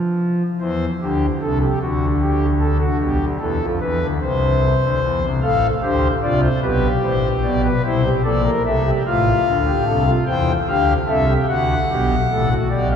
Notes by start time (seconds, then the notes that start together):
Already playing: F3
0.61 E2 E3 C5
1.01 D2 D3 G4
1.42 C2 C3 A4
1.62 G4
1.82 D2 D3 F#4
2.21 G4
2.60 A4
2.80 F#4
3.00 B1 B2 G4
3.20 D2 D3
3.40 E2 E3 A4
3.61 F2 F3
3.81 E2 E3 B4
4.02 D2 D3
4.21 C2 C3 C5
4.83 D2 D3
5.03 E2 E3
5.22 C2 C3
5.42 A1 A2 A4 F5
5.83 D2 D3 G4 C5
6.23 C2 C3 F4 D5
6.42 C5
6.62 B1 B2 G4 B4
7.04 A1 A2 C5
7.43 B1 B2 D5
7.64 B4
7.84 C2 C3 E4 C5
8.04 G4
8.24 A#1 A#2 A4 D5
8.45 A#4
8.65 C2 C3 A4 E5
8.85 G4
9.06 A1 A2 F4 F5
9.46 D2 D3
9.67 G4
9.86 C2 C3 A4
10.07 F4
10.26 E2 E3 C5 G5
10.68 D2 D3 G4 F5
11.07 C2 C3 A4 E5
11.28 G4
11.49 D2 D3 F#4 F#5
11.89 B1 B2 G4
12.31 A1 A2 A4
12.51 F#4
12.70 B1 B2 G4 D5
12.90 F5